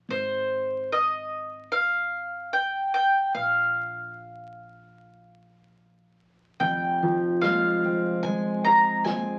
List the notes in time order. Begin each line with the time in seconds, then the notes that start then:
0.09 G#1 C5
0.92 D#5
1.72 F5
2.53 G5
2.94 G5
3.35 A#1 F5
6.60 F1 F2 G5, kick
7.02 F3
7.41 G#3 F5, snare
7.85 C4
8.23 G#3 G#5, kick
8.65 G#4 A#5
9.04 C4 G#5, snare